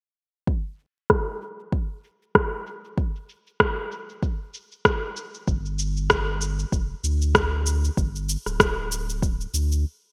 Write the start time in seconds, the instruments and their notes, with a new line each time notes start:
0.47 kick
0.66 cabasa
0.79 cabasa
0.97 cabasa
1.10 kick, cross-stick, cabasa
1.42 cabasa
1.59 cabasa
1.72 kick, cabasa
2.04 cabasa
2.22 cabasa
2.35 kick, cross-stick, cabasa
2.67 cabasa
2.85 cabasa
2.98 kick, cabasa
3.16 cabasa
3.29 cabasa
3.47 cabasa
3.60 kick, cross-stick, cabasa
3.92 cabasa
4.09 cabasa
4.23 kick, cabasa
4.54 cabasa
4.72 cabasa
4.85 kick, cross-stick, cabasa
5.17 cabasa
5.34 cabasa
5.48 sub bass G1, kick, cabasa
5.66 cabasa
5.79 cabasa
5.97 cabasa
6.10 kick, cross-stick, cabasa
6.41 cabasa
6.59 cabasa
6.72 sub bass F1, kick, cabasa
7.04 sub bass D2, cabasa
7.22 cabasa
7.35 kick, cross-stick, cabasa
7.66 cabasa
7.84 cabasa
7.97 sub bass G1, kick, cabasa
8.16 cabasa
8.29 cabasa
8.46 sub bass D1, cross-stick, cabasa
8.60 kick, cross-stick, cabasa
8.92 cabasa
9.10 cabasa
9.22 kick, cabasa
9.41 cabasa
9.54 sub bass D2, cabasa
9.72 cabasa